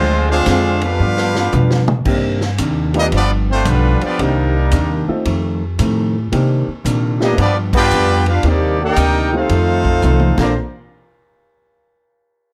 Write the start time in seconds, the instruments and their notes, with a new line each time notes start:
Already playing: upright bass D2, hollow-body jazz guitar D3 G#3 C4 F4, trombone section D3 F3 G#3 C4 F4, trumpet section G#3 D4 F4 C5
0.29 trombone section G#3 C4 F4, trumpet section D4 G#4 C5 F5
0.46 upright bass F2, hollow-body jazz guitar D3 G#3 C4 F4, kick, snare, hi-hat pedal, ride
0.81 trombone section B3 D4 F4, trumpet section D4 G4 B4 F5, ride
0.99 hollow-body jazz guitar G2 F3 B3 D4, upright bass G2, trombone section G3 B3
1.17 snare
1.35 snare
1.52 hollow-body jazz guitar G2 F3 B3 D4, upright bass B2, floor tom, hi-hat pedal
1.70 snare
1.88 mid tom
2.05 upright bass G2, hollow-body jazz guitar C3 D#3 A#3 D4, upright piano A#3 C4 D4 D#4 G4, kick, crash
2.41 snare
2.58 upright bass D#2, hollow-body jazz guitar C3 D#3 A#3 D4, kick, hi-hat pedal, ride
2.93 trombone section G3 A#3 D#4, upright piano A3 B3 D4 F4 G4, ride
3.00 trumpet section A#3 D4 G4 D#5
3.12 upright bass G1, hollow-body jazz guitar G2 F3 B3 D4, trombone section F3 B3 D4, kick, ride
3.16 trumpet section B3 F4 G4 D5
3.49 trumpet section A3 F4 C5, trombone section C4
3.53 trumpet section D4
3.65 upright bass B1, hollow-body jazz guitar G2 F3 B3 D4, trombone section D3 F3 B3, kick, hi-hat pedal, ride
3.70 trumpet section G3 D4 F4 B4
4.01 trombone section F3 B3 D4, trumpet section G4, muted upright bass stroke, ride
4.05 trumpet section B3 F4 D5
4.18 upright bass C2, hollow-body jazz guitar C3 D#3 A#3 D4, trombone section D#3 G3 A#3, upright piano A#3 C4 D4 D#4 G4, kick, ride
4.23 trumpet section G3 D4 D#4 A#4
4.71 upright bass D#2, hollow-body jazz guitar C3 D#3 A#3 D4, kick, hi-hat pedal, ride
5.08 upright piano A3 C4 D#4 F4 A4, muted upright bass stroke
5.25 hollow-body jazz guitar F2 D#3 A3 C4, upright bass F2, kick, ride
5.78 hollow-body jazz guitar F2 D#3 A3 C4, upright bass A2, kick, hi-hat pedal, ride
6.32 hollow-body jazz guitar C3 D#3 A#3 D4, upright bass C3, upright piano A#3 C4 D4 D#4 G4, kick, ride
6.67 muted upright bass stroke
6.84 upright bass A#2, hollow-body jazz guitar C3 D#3 A#3 D4, kick, hi-hat pedal, ride
7.20 trombone section G3 A#3 D#4, upright piano A3 B3 D4 F4 G4, snare
7.24 trumpet section A#3 D4 G4 D#5
7.37 upright bass G2, hollow-body jazz guitar G2 F3 B3 D4, trombone section F3 B3 D4, kick, ride
7.42 trumpet section B3 F4 G4 D5
7.73 trombone section B3 D4 G4, kick, crash
7.77 trumpet section F4 B4 D5 G5
7.90 upright bass F2, hollow-body jazz guitar G2 F3 B3 D4, hi-hat pedal
8.26 trombone section B3 D4 F4, trumpet section D4 G4 B4 F5, ride
8.43 upright bass D#2, hollow-body jazz guitar C3 D#3 A#3 D4, trombone section G3 A#3 D4, upright piano A#3 C4 D4 D#4 G4, kick, ride
8.49 trumpet section A#3 D#4 G4 D5
8.80 trombone section A#3 D#4 G4
8.85 trumpet section D#4 A#4 D5 G5
8.96 upright bass D2, hollow-body jazz guitar C3 D#3 A#3 D4, kick, hi-hat pedal, ride
9.33 upright piano A3 C4 D#4 F4 G4, trombone section A3 C4 F4
9.37 trumpet section D#4 A4 C5 F5
9.49 upright bass F2, hollow-body jazz guitar F2 D#3 A3 C4, kick, ride
9.85 kick
10.02 upright bass C2, hollow-body jazz guitar F2 D#3 A3 C4, hi-hat pedal, high tom
10.20 high tom
10.38 upright bass A#1, trombone section A#2 F3 A3 D4, hollow-body jazz guitar A#3 D4 A4 C5, upright piano A#3 C4 D4 F4 A4, trumpet section F4 C5 D5 A#5, kick, snare, crash